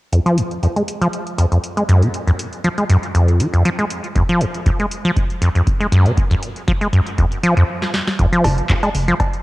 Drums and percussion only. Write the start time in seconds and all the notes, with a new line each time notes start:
0.12 closed hi-hat
0.26 closed hi-hat
0.38 closed hi-hat
0.51 closed hi-hat
0.63 closed hi-hat
0.76 closed hi-hat
0.88 closed hi-hat
1.02 closed hi-hat
1.13 closed hi-hat
1.27 closed hi-hat
1.38 closed hi-hat
1.52 closed hi-hat
1.64 closed hi-hat
1.77 closed hi-hat
1.89 closed hi-hat
2.02 closed hi-hat
2.14 closed hi-hat
2.28 closed hi-hat
2.39 closed hi-hat
2.53 closed hi-hat
2.64 closed hi-hat
2.78 closed hi-hat
2.90 closed hi-hat
3.03 closed hi-hat
3.15 closed hi-hat
3.28 closed hi-hat
3.40 closed hi-hat
3.54 closed hi-hat
3.65 closed hi-hat
3.79 closed hi-hat
3.90 closed hi-hat
4.04 closed hi-hat
4.16 kick, closed hi-hat
4.29 closed hi-hat
4.41 closed hi-hat
4.54 closed hi-hat
4.66 kick, closed hi-hat
4.80 closed hi-hat
4.91 closed hi-hat
5.05 closed hi-hat
5.16 kick, closed hi-hat
5.30 closed hi-hat
5.42 closed hi-hat
5.55 closed hi-hat
5.67 kick, closed hi-hat
5.81 closed hi-hat
5.92 closed hi-hat
6.06 closed hi-hat
6.17 kick, closed hi-hat
6.31 closed hi-hat
6.43 closed hi-hat
6.56 closed hi-hat
6.68 kick, closed hi-hat
6.81 closed hi-hat
6.93 closed hi-hat
7.07 closed hi-hat
7.18 kick, closed hi-hat
7.32 closed hi-hat
7.43 closed hi-hat
7.57 closed hi-hat
7.82 snare
7.94 snare
8.07 snare
8.19 kick, closed hi-hat
8.33 closed hi-hat
8.44 open hi-hat, mid tom, cowbell
8.58 closed hi-hat
8.69 kick, clap, closed hi-hat
8.83 closed hi-hat, cowbell
8.95 open hi-hat, mid tom
9.08 closed hi-hat
9.20 kick, closed hi-hat, cowbell
9.33 closed hi-hat